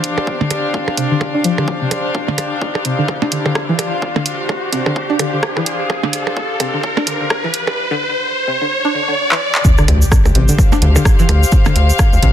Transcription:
0.00 7.77 D4 medium
0.00 7.77 G4 medium
0.00 7.77 C5 medium
0.00 7.77 F5 medium
0.00 closed hi-hat medium
0.00 riser medium
0.18 percussion blips soft
0.27 kick loud
0.41 0.45 D3 loud
0.41 percussion blips medium
0.51 closed hi-hat medium
0.51 percussion blips soft
0.74 kick loud
0.88 percussion blips soft
0.97 1.06 C3 medium
0.97 kick medium
0.97 closed hi-hat medium
1.11 1.15 D3 medium
1.21 kick loud
1.21 percussion blips soft
1.35 1.39 D4 loud
1.44 1.50 F3 loud
1.44 closed hi-hat medium
1.58 1.64 D3 medium
1.58 percussion blips soft
1.68 kick loud
1.81 1.86 C3 medium
1.91 closed hi-hat loud
1.91 percussion blips soft
2.15 kick loud
2.28 2.33 D3 loud
2.28 percussion blips medium
2.38 closed hi-hat medium
2.38 percussion blips soft
2.62 kick loud
2.75 percussion blips soft
2.85 2.94 C3 medium
2.85 closed hi-hat medium
2.99 3.03 D3 medium
3.08 kick loud
3.08 percussion blips soft
3.22 3.26 D4 loud
3.22 percussion blips medium
3.32 3.38 D3 medium
3.32 kick medium
3.32 closed hi-hat medium
3.46 3.52 D3 medium
3.46 percussion blips soft
3.55 kick loud
3.55 cross-stick loud
3.69 3.72 E3 loud
3.79 closed hi-hat medium
3.79 percussion blips soft
4.02 kick loud
4.16 4.20 D3 loud
4.16 percussion blips soft
4.16 percussion blips medium
4.26 closed hi-hat medium
4.49 kick loud
4.49 percussion blips soft
4.73 4.81 C3 medium
4.73 kick medium
4.73 closed hi-hat medium
4.86 4.91 D3 medium
4.86 percussion blips soft
4.96 kick loud
5.10 5.14 D4 loud
5.19 5.25 D3 medium
5.19 closed hi-hat medium
5.19 percussion blips soft
5.33 5.39 D3 medium
5.43 kick loud
5.43 cross-stick loud
5.57 5.59 E3 loud
5.57 percussion blips soft
5.66 closed hi-hat medium
5.90 kick loud
5.90 percussion blips soft
6.03 6.08 D3 loud
6.03 percussion blips medium
6.13 closed hi-hat medium
6.27 percussion blips soft
6.37 kick loud
6.60 6.69 C3 medium
6.60 closed hi-hat medium
6.60 percussion blips soft
6.74 6.78 D3 medium
6.83 kick loud
6.97 7.01 D4 loud
6.97 percussion blips soft
6.97 percussion blips medium
7.07 7.13 D3 medium
7.07 kick medium
7.07 closed hi-hat medium
7.21 7.27 D3 medium
7.30 kick loud
7.30 cross-stick loud
7.30 percussion blips soft
7.44 7.47 E3 loud
7.54 closed hi-hat medium
7.67 percussion blips soft
7.91 7.95 D3 loud
8.48 8.56 C3 medium
8.61 8.66 D3 medium
8.85 8.89 D4 loud
8.94 9.00 D3 medium
9.08 9.14 D3 medium
9.32 9.34 E3 loud
9.32 clap medium
9.55 clap loud
9.65 12.33 G4 medium
9.65 kick loud
9.65 impact medium
9.65 shaker medium
9.78 9.83 D3 loud
9.78 cross-stick medium
9.78 shaker soft
9.88 10.04 D2 loud
9.88 closed hi-hat medium
9.88 percussion blips soft
10.02 shaker medium
10.12 kick loud
10.12 cross-stick loud
10.12 shaker medium
10.25 10.31 D2 medium
10.25 percussion blips soft
10.25 shaker soft
10.32 10.51 A1 medium
10.32 10.44 C3 medium
10.32 12.33 C5 medium
10.32 closed hi-hat medium
10.48 10.53 D3 medium
10.48 shaker medium
10.58 12.33 F5 medium
10.58 kick loud
10.58 percussion blips soft
10.58 shaker medium
10.72 10.76 D4 loud
10.72 percussion blips medium
10.72 shaker soft
10.82 10.98 D2 loud
10.82 10.88 D3 medium
10.82 closed hi-hat medium
10.96 11.02 D3 medium
10.96 percussion blips soft
10.96 shaker medium
11.05 kick loud
11.05 cross-stick loud
11.05 shaker medium
11.19 11.22 E3 loud
11.19 shaker soft
11.29 11.45 D2 medium
11.29 closed hi-hat medium
11.29 percussion blips soft
11.43 shaker medium
11.52 kick loud
11.52 shaker medium
11.65 11.70 D3 loud
11.65 cross-stick medium
11.65 percussion blips soft
11.65 percussion blips medium
11.65 shaker soft
11.76 11.92 D2 loud
11.76 closed hi-hat loud
11.90 shaker medium
11.99 kick loud
11.99 cross-stick loud
11.99 percussion blips soft
11.99 shaker medium
12.13 12.19 D2 medium
12.13 shaker soft
12.23 12.33 A1 medium
12.23 12.31 C3 medium
12.23 kick medium
12.23 closed hi-hat loud

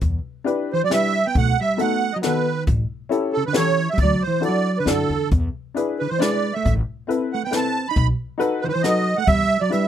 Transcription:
0.01 0.17 E2 medium
0.01 kick medium
0.01 closed hi-hat soft
0.44 0.68 D4 medium
0.44 0.69 E4 medium
0.44 0.69 G4 medium
0.44 0.69 B4 medium
0.44 closed hi-hat soft
0.73 0.81 E3 medium
0.73 0.82 C5 medium
0.84 0.92 F#3 medium
0.84 0.93 D5 medium
0.90 1.13 D4 medium
0.90 1.13 E4 medium
0.90 1.14 G4 medium
0.90 1.14 B4 medium
0.90 1.26 E5 medium
0.90 snare medium
0.90 closed hi-hat soft
0.94 1.24 G3 medium
1.26 1.35 B3 medium
1.26 1.36 G5 medium
1.35 1.50 B1 medium
1.35 1.58 A3 medium
1.35 1.60 F#5 medium
1.35 kick medium
1.35 closed hi-hat soft
1.60 1.79 G3 medium
1.60 1.81 E5 medium
1.77 2.01 B3 medium
1.77 2.01 D#4 medium
1.77 2.01 F#4 medium
1.77 2.02 A4 medium
1.77 2.14 F#5 medium
1.77 closed hi-hat soft
1.82 2.12 A3 medium
2.13 2.20 F#3 medium
2.13 2.18 D#5 medium
2.22 2.45 B3 medium
2.22 2.46 D#4 medium
2.22 2.46 F#4 medium
2.22 2.46 A4 medium
2.22 2.64 B4 medium
2.22 snare medium
2.22 closed hi-hat soft
2.26 2.65 D#3 medium
2.67 2.82 A1 loud
2.67 kick medium
2.67 closed hi-hat soft
3.09 3.33 C#4 medium
3.09 3.33 E4 medium
3.09 3.34 G4 medium
3.09 3.34 A4 medium
3.09 closed hi-hat soft
3.33 3.45 C#3 medium
3.33 3.44 A4 medium
3.46 3.55 D3 medium
3.46 3.55 B4 medium
3.53 3.77 C#4 medium
3.53 3.76 E4 medium
3.53 3.77 G4 medium
3.53 3.77 A4 medium
3.53 3.90 C#5 medium
3.53 snare medium
3.53 closed hi-hat soft
3.58 3.87 E3 medium
3.90 4.00 G3 medium
3.90 3.99 E5 medium
3.98 4.13 D2 medium
3.98 4.23 D5 medium
3.98 kick medium
3.98 closed hi-hat soft
4.03 4.22 F#3 medium
4.22 4.43 C5 medium
4.27 4.44 E3 medium
4.40 4.65 D4 medium
4.40 4.65 E4 medium
4.40 4.65 F#4 medium
4.40 4.65 A4 medium
4.40 4.78 D5 medium
4.40 closed hi-hat soft
4.48 4.77 F#3 medium
4.78 4.88 D3 medium
4.78 4.88 B4 medium
4.85 5.08 F#2 medium
4.85 5.10 D4 medium
4.85 5.10 E4 medium
4.85 5.10 F#4 soft
4.85 5.10 A4 medium
4.85 5.29 A4 medium
4.85 snare medium
4.85 closed hi-hat soft
4.90 5.30 D3 soft
5.09 5.29 E2 medium
5.31 5.47 E2 loud
5.31 kick medium
5.31 closed hi-hat soft
5.74 5.99 D4 medium
5.74 5.99 E4 medium
5.74 5.99 G#4 medium
5.74 5.99 B4 medium
5.74 closed hi-hat soft
5.99 6.10 D3 medium
5.99 6.10 B4 medium
6.09 6.20 E3 medium
6.09 6.20 C5 medium
6.19 6.53 G#3 medium
6.19 6.43 D4 medium
6.19 6.43 E4 medium
6.19 6.43 G#4 medium
6.19 6.44 B4 medium
6.19 6.54 D5 medium
6.19 snare medium
6.19 closed hi-hat soft
6.53 6.76 A3 medium
6.53 6.74 E5 medium
6.65 6.80 A1 loud
6.65 kick medium
6.65 closed hi-hat soft
7.07 7.31 C4 medium
7.07 7.31 E4 medium
7.07 7.31 A4 medium
7.07 7.31 B4 medium
7.07 closed hi-hat soft
7.33 7.42 A3 medium
7.33 7.43 F#5 medium
7.44 7.54 B3 medium
7.44 7.53 G5 medium
7.51 7.74 C4 medium
7.51 7.74 E4 soft
7.51 7.74 A4 medium
7.51 7.75 B4 medium
7.51 snare medium
7.51 closed hi-hat soft
7.57 7.86 C4 medium
7.57 7.88 A5 medium
7.89 8.08 D#4 medium
7.89 8.07 B5 medium
7.96 8.11 B1 medium
7.96 kick medium
7.96 closed hi-hat soft
8.38 8.61 D#4 medium
8.38 8.62 F#4 medium
8.38 8.62 A4 medium
8.38 8.62 B4 medium
8.38 closed hi-hat soft
8.61 8.66 D#3 medium
8.61 8.64 B4 medium
8.61 8.67 C5 medium
8.66 8.72 D#3 medium
8.66 8.68 E3 medium
8.66 8.73 B4 medium
8.73 8.84 E3 medium
8.73 8.82 C5 medium
8.82 9.06 D#4 medium
8.82 9.06 F#4 medium
8.82 9.07 A4 medium
8.82 9.07 B4 medium
8.82 9.17 D#5 medium
8.82 snare soft
8.82 closed hi-hat soft
8.86 9.16 F#3 medium
9.17 9.27 A3 medium
9.17 9.27 F#5 medium
9.27 9.42 E2 medium
9.27 9.59 G3 medium
9.27 9.62 E5 loud
9.27 kick medium
9.27 closed hi-hat soft
9.61 9.71 F#3 medium
9.61 9.71 D5 medium
9.69 9.88 D4 medium
9.69 9.88 E4 medium
9.69 9.88 G4 soft
9.69 9.88 B4 medium
9.69 9.88 E5 medium
9.69 closed hi-hat soft
9.74 9.88 G3 medium

